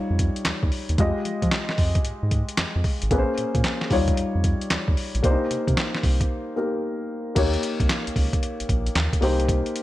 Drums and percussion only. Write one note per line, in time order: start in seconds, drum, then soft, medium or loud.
0.19 kick medium
0.19 closed hi-hat medium
0.36 closed hi-hat medium
0.45 snare loud
0.45 clap medium
0.45 closed hi-hat medium
0.63 kick medium
0.72 open hi-hat medium
0.89 closed hi-hat medium
0.98 kick loud
0.98 closed hi-hat medium
1.25 closed hi-hat medium
1.42 kick medium
1.42 closed hi-hat soft
1.51 snare loud
1.51 clap medium
1.51 closed hi-hat medium
1.69 snare medium
1.78 kick medium
1.78 open hi-hat medium
1.95 kick loud
1.95 closed hi-hat medium
2.05 closed hi-hat medium
2.31 kick medium
2.31 closed hi-hat medium
2.49 closed hi-hat medium
2.57 snare loud
2.57 clap medium
2.57 closed hi-hat medium
2.84 kick loud
2.84 open hi-hat medium
3.02 closed hi-hat medium
3.11 kick loud
3.11 closed hi-hat medium
3.38 closed hi-hat medium
3.55 kick medium
3.55 closed hi-hat medium
3.64 snare loud
3.64 clap medium
3.64 closed hi-hat medium
3.81 snare medium
3.91 kick medium
3.91 open hi-hat medium
4.08 kick medium
4.08 closed hi-hat medium
4.17 closed hi-hat medium
4.44 kick medium
4.44 closed hi-hat medium
4.61 closed hi-hat medium
4.70 snare loud
4.70 clap medium
4.70 closed hi-hat medium
4.88 kick medium
4.97 open hi-hat medium
5.15 closed hi-hat medium
5.24 kick loud
5.24 closed hi-hat medium
5.51 closed hi-hat medium
5.68 kick loud
5.68 closed hi-hat medium
5.77 snare loud
5.77 clap medium
5.77 closed hi-hat medium
5.95 snare medium
6.03 kick medium
6.03 open hi-hat medium
6.21 kick loud
6.21 closed hi-hat medium
7.36 kick loud
7.36 closed hi-hat medium
7.36 crash loud
7.53 closed hi-hat soft
7.63 closed hi-hat medium
7.80 kick medium
7.80 closed hi-hat medium
7.89 snare loud
7.89 clap medium
7.89 closed hi-hat medium
8.07 closed hi-hat medium
8.16 kick medium
8.16 open hi-hat medium
8.33 kick loud
8.33 closed hi-hat medium
8.43 closed hi-hat medium
8.60 closed hi-hat medium
8.69 kick medium
8.69 closed hi-hat medium
8.86 closed hi-hat medium
8.95 snare loud
8.95 clap loud
8.95 closed hi-hat medium
9.13 kick medium
9.13 closed hi-hat medium
9.22 open hi-hat medium
9.40 closed hi-hat medium
9.49 kick loud
9.49 closed hi-hat medium
9.66 closed hi-hat soft
9.76 closed hi-hat medium